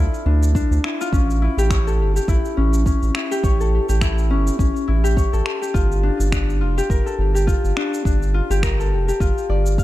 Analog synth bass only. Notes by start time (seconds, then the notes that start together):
0.26 D2
0.71 D2
1.13 A1
1.57 A1
1.99 G1
2.28 A1
2.58 A1
3.03 A1
3.44 A1
3.89 A1
4.31 G1
4.59 A1
4.89 A1
5.34 A1
5.75 G1
6.20 G1
6.61 F1
6.90 G1
7.19 G1
7.64 G1
8.05 G1
8.50 G1
8.92 F1
9.20 G1
9.49 G1